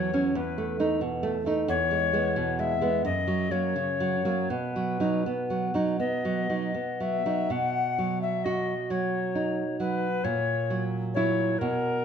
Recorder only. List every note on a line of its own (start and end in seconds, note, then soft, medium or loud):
0.00 0.38 C#5 medium
0.36 0.79 B4 soft
1.69 2.61 C#5 medium
2.60 3.04 E5 medium
3.05 3.53 D#5 medium
3.51 4.51 C#5 medium
4.50 5.73 B4 medium
5.99 7.03 D#5 soft
7.01 7.53 E5 soft
7.52 8.21 F#5 medium
8.22 8.46 E5 soft
8.44 8.92 D#5 medium
8.91 9.79 C#5 medium
9.80 10.26 B4 soft
10.24 10.83 C#5 medium
11.14 11.60 C#5 medium
11.58 12.05 A#4 medium